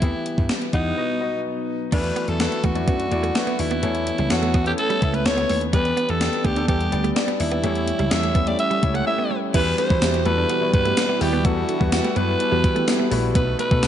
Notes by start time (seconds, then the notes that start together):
Already playing: E4
0.02 E2 E3 G3 B3 E4 G4 E5, kick, closed hi-hat
0.26 closed hi-hat
0.38 G2, kick
0.49 snare, closed hi-hat
0.62 closed hi-hat
0.73 E2 B3 D#4 E4 G4 F#5, kick, closed hi-hat
0.97 B2 F#3 B3 D#4 F#4 D#5
1.20 B3 D#4 F#4 D#5
1.92 E2 E3 F#3 A3 D4 E4 F#4 B4 D5, kick, closed hi-hat, crash
2.04 muted clean electric guitar stroke, closed hi-hat
2.16 B3, closed hi-hat
2.28 E2 A4, closed hi-hat
2.39 A3 E4 F#4 B4, muted clean electric guitar stroke, snare, closed hi-hat
2.52 closed hi-hat
2.64 E2 A3 F#4, kick, closed hi-hat
2.75 A3 D4 E4 F#4 D5, closed hi-hat
2.88 F#2 B3 F#4, kick, closed hi-hat
3.00 closed hi-hat
3.11 E2 A3 E4 F#4 D5, muted clean electric guitar stroke, closed hi-hat
3.23 A3, closed hi-hat
3.35 A3 E4 F#4 B4, snare, closed hi-hat
3.47 B3, closed hi-hat
3.59 D#2 E4, muted clean electric guitar stroke, open hi-hat
3.71 B3, closed hi-hat
3.82 E2 E3 A3 B3 C#4 E4 A4 C#5, closed hi-hat
3.95 closed hi-hat
4.07 muted clean electric guitar stroke, closed hi-hat
4.18 C#2 G3, closed hi-hat
4.30 E2 B3 E4 F#4 A4 C#5, muted clean electric guitar stroke, snare, closed hi-hat
4.42 A3, closed hi-hat
4.54 E2 B3, kick, closed hi-hat
4.65 B3 E4 G4 A4 C#5, closed hi-hat
4.78 A4, closed hi-hat
4.90 G3, closed hi-hat
5.01 C#2 B3 E4 A4 E5, muted clean electric guitar stroke, kick, closed hi-hat
5.14 A3 B4, closed hi-hat
5.25 C#2 B3 E4 A4 C#5, muted clean electric guitar stroke, snare, closed hi-hat
5.37 B3, closed hi-hat
5.49 D#2 A3, open hi-hat
5.61 closed hi-hat
5.73 E2 E3 G3 B3 D4 G4 B4 D5, kick, closed hi-hat
5.85 muted clean electric guitar stroke, closed hi-hat
5.97 B3, closed hi-hat
6.09 E2 A4, closed hi-hat
6.20 B3 D4 G4 D5, muted clean electric guitar stroke, snare, closed hi-hat
6.33 closed hi-hat
6.45 D2 A3 G4, kick, closed hi-hat
6.56 B3 D4 G4 A4, closed hi-hat
6.68 E2 B3 G4, kick, closed hi-hat
6.81 closed hi-hat
6.92 D2 B3 D4 G4 D5, muted clean electric guitar stroke, closed hi-hat
7.04 A3, closed hi-hat
7.15 B3 D4 G4 D5, snare, closed hi-hat
7.28 B3, closed hi-hat
7.40 D#2 E4, muted clean electric guitar stroke, open hi-hat
7.52 B3, closed hi-hat
7.63 E2 E3 A3 C#4 E4 G4 C#5, closed hi-hat
7.75 closed hi-hat
7.88 muted clean electric guitar stroke, closed hi-hat
7.99 C#2 G3, closed hi-hat
8.11 E2 A3 E4 G4 C#5 E5, muted clean electric guitar stroke, snare, closed hi-hat
8.23 A3, closed hi-hat
8.35 E2 B3, kick, closed hi-hat
8.46 A3 E4 G4 D5 E5, closed hi-hat
8.59 E5, closed hi-hat
8.71 G3, closed hi-hat
8.82 C#2 A3 E4 G4 C#5, muted clean electric guitar stroke, kick, closed hi-hat
8.94 A3 F#5, closed hi-hat
9.06 A3 E4 G4 E5, muted clean electric guitar stroke
9.19 B3
9.31 A3
9.54 E2 E3 G3 B3 E4 F#4 G4 B4, kick, closed hi-hat, crash
9.67 muted clean electric guitar stroke
9.78 B3 D4 F#4 A4 C5, closed hi-hat
9.89 B2 E3 G3 E4 F#4 B5, kick
10.02 E2 B3 E4 G4, muted clean electric guitar stroke, snare, closed hi-hat, tambourine
10.14 closed hi-hat
10.25 E2 G3 A3 B3 E4 F#4 A4 B4, closed hi-hat
10.38 D4
10.49 B3 E4 G4, closed hi-hat
10.61 G3 B3 E4 F#4 B4
10.73 G2 B4, muted clean electric guitar stroke, kick, closed hi-hat
10.85 A3 B3 E4 G4, closed hi-hat
10.97 snare, closed hi-hat, tambourine
11.09 B3 E4 G4
11.21 D#2 G3 B3 E4 F#4 G4 D5, muted clean electric guitar stroke, open hi-hat
11.33 B3
11.44 E2 E3 G3 A3 B3 E4 F#4 G4 A4 B4, kick, closed hi-hat
11.69 D4 F#4 A4, muted clean electric guitar stroke, closed hi-hat
11.80 E2 G3 B3 E4 F#4 B4, kick
11.92 B3 E4 F#4 G4, muted clean electric guitar stroke, snare, closed hi-hat, tambourine
12.04 A3, closed hi-hat
12.16 F#2 G3 B3 E4 F#4 B4, closed hi-hat
12.40 B3 E4 G4, closed hi-hat
12.51 E2 G3 B3 E4 F#4 B4
12.64 E3, muted clean electric guitar stroke, kick, closed hi-hat
12.76 A3 B3 E4 G4, closed hi-hat
12.88 G3 B3 E4, muted clean electric guitar stroke, snare, closed hi-hat, tambourine
13.00 B3
13.11 A#1 G3 A3 B3 E4 F#4 B4, open hi-hat
13.35 B1 B2 A3 B3 D#4 F#4 B4, kick, closed hi-hat
13.47 muted clean electric guitar stroke
13.59 A3 B4, closed hi-hat
13.71 B2 A3 B3 D#4 F#4 A4, kick
13.83 B1, muted clean electric guitar stroke, snare, closed hi-hat, tambourine